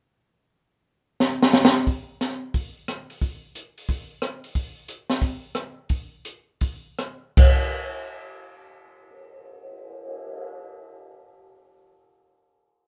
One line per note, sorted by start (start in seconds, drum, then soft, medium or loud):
1.20 snare medium
1.42 snare medium
1.53 snare medium
1.65 snare medium
1.87 kick soft
1.87 open hi-hat soft
2.21 snare soft
2.21 closed hi-hat medium
2.54 kick soft
2.54 open hi-hat soft
2.88 cross-stick medium
2.88 closed hi-hat soft
3.10 open hi-hat soft
3.21 kick soft
3.21 open hi-hat soft
3.55 closed hi-hat medium
3.78 open hi-hat soft
3.89 kick soft
3.89 open hi-hat soft
4.22 cross-stick medium
4.22 closed hi-hat medium
4.44 open hi-hat soft
4.55 kick soft
4.55 open hi-hat soft
4.88 closed hi-hat medium
5.10 snare soft
5.10 open hi-hat soft
5.22 kick soft
5.22 open hi-hat soft
5.55 cross-stick medium
5.55 closed hi-hat medium
5.89 kick soft
5.89 open hi-hat soft
6.25 closed hi-hat medium
6.61 kick soft
6.61 open hi-hat soft
6.99 cross-stick medium
6.99 closed hi-hat soft
7.37 kick medium
7.37 crash medium
7.62 cymbal swell soft